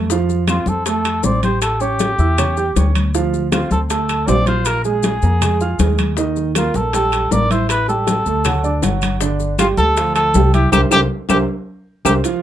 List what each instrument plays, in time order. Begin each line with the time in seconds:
Already playing: upright bass F2
0.10 grand piano F3 F4 F5, high bongo, high conga, maracas
0.29 high bongo, high conga, maracas
0.47 grand piano C4 C5 C6, trumpet F4, high bongo, high conga, high timbale, claves, maracas
0.66 upright bass F2, trumpet A4, high bongo, high conga, maracas
0.85 grand piano A3 A4 A5, trumpet A4, high bongo, high conga, high timbale, maracas
1.04 high bongo, high conga, high timbale, claves, maracas
1.23 upright bass A1, grand piano C4 C5 C6, trumpet D5, high bongo, low bongo, high conga, maracas
1.43 grand piano G4 G5 G6, trumpet C5, high conga, high timbale, maracas
1.62 trumpet A4, high bongo, high timbale, claves, maracas
1.80 grand piano C#4 C#5 C#6, trumpet G4, high bongo, high conga, maracas
1.99 high bongo, high conga, high timbale, maracas
2.18 upright bass E2, grand piano E4 E5 E6, high bongo, high conga, maracas
2.38 grand piano C#4 C#5 C#6, high bongo, high conga, low conga, high timbale, claves, maracas
2.57 grand piano G4 G5 G6, high bongo, high conga, maracas
2.76 upright bass D2, grand piano C#4 C#5 C#6, high bongo, low bongo, high conga, high timbale, maracas
2.95 high conga, high timbale, claves, maracas
3.14 grand piano F3 F4 F5, high bongo, high conga, maracas
3.33 high bongo, high conga, maracas
3.52 grand piano C4 C5 C6, trumpet F4, high bongo, high conga, high timbale, claves, maracas
3.71 upright bass D2, trumpet A4, high bongo, high conga, maracas
3.90 grand piano A3 A4 A5, trumpet A4, high bongo, high conga, high timbale, maracas
4.09 high bongo, high conga, high timbale, claves, maracas
4.28 upright bass A#1, grand piano C4 C5 C6, trumpet D5, high bongo, low bongo, high conga, low timbale, maracas
4.46 grand piano F4 F5 F6, trumpet C5, high conga, high timbale, maracas
4.65 trumpet A#4, high bongo, high timbale, claves, maracas
4.84 grand piano G#3 G#4 G#5, trumpet G#4, high bongo, high conga, maracas
5.03 high bongo, high conga, high timbale, maracas
5.22 upright bass F2, grand piano A#3 A#4 A#5, high bongo, high conga, maracas
5.41 grand piano G#3 G#4 G#5, high bongo, high conga, low conga, high timbale, claves, maracas
5.60 grand piano F4 F5 F6, high bongo, high conga, maracas
5.79 upright bass D#2, grand piano G#3 G#4 G#5, high bongo, low bongo, high conga, high timbale, maracas
5.98 high conga, high timbale, claves, maracas
6.17 grand piano D#3 D#4 D#5, high bongo, high conga, maracas
6.36 high bongo, high conga, maracas
6.55 grand piano A#3 A#4 A#5, trumpet F4, high bongo, high conga, high timbale, claves, maracas
6.74 upright bass A#1, trumpet A4, high bongo, high conga, maracas
6.93 grand piano G3 G4 G5, trumpet A4, high bongo, high conga, high timbale, maracas
7.12 high bongo, high conga, high timbale, claves, maracas
7.31 upright bass A1, grand piano A#3 A#4 A#5, trumpet D5, high bongo, low bongo, high conga, maracas
7.50 grand piano E4 E5 E6, trumpet C5, high conga, high timbale, maracas
7.69 trumpet B4, high bongo, high conga, high timbale, claves, maracas
7.88 grand piano G3 G4 G5, trumpet A4, high bongo, high conga, maracas
8.07 high bongo, high conga, high timbale, maracas
8.25 upright bass D2, grand piano A3 A4 A5, high bongo, high conga, maracas
8.44 grand piano F#3 F#4 F#5, high bongo, high conga, low conga, high timbale, claves, maracas
8.64 grand piano D4 D5 D6, high bongo, high conga, maracas
8.82 upright bass G1, grand piano F#3 F#4 F#5, high bongo, low bongo, high conga, high timbale, maracas
9.02 high conga, high timbale, claves, maracas
9.21 grand piano D3 D4 D5, high bongo, high conga, maracas
9.39 high bongo, high conga, maracas
9.59 grand piano G3 G4 G5, trumpet F4, high bongo, high conga, high timbale, claves, maracas
9.77 upright bass D2, trumpet A4, high bongo, high conga, maracas
9.97 grand piano F3 F4 F5, high bongo, high conga, high timbale, maracas
10.15 trumpet A4, high bongo, high conga, high timbale, claves, maracas
10.34 upright bass C2, grand piano G3 G4 G5, high bongo, low bongo, high conga, low timbale, maracas
10.54 grand piano E4 E5 E6, trumpet G4, high conga, high timbale, maracas
10.72 upright bass C2, trumpet G4, grand piano G4 A#4 C5, low bongo, high conga, high timbale, claves, maracas
10.91 upright bass C2, grand piano G4 A#4 C5, trumpet G4, low bongo, high conga, high timbale, claves, maracas
11.29 upright bass C2, trumpet G4, grand piano G4 A#4 C5, low bongo, high conga, high timbale, claves, maracas
12.05 upright bass C2, trumpet G4, grand piano G4 A#4 C5, low bongo, high conga, high timbale, claves, maracas
12.24 grand piano F3 F4 F5, high timbale, maracas